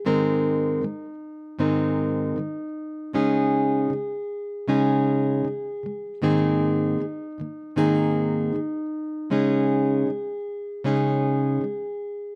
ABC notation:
X:1
M:4/4
L:1/8
Q:1/4=78
K:Abmix
V:1 name="Steel-string acoustic guitar" clef=bass
[A,,E,A,CEB]2 [A,,E,A,] z [A,,E,A,CEB]2 [A,,E,A,] z | [D,A,DEA]2 [D,A,] z [D,A,DEA]2 [D,A,] [D,A,] | [A,,E,B,CEA]2 [A,,E,B,] [A,,E,B,] [A,,E,B,CEA]2 [A,,E,B,] z | [D,A,DEA]2 [D,A,] z [D,A,DEA]2 [D,A,] z |]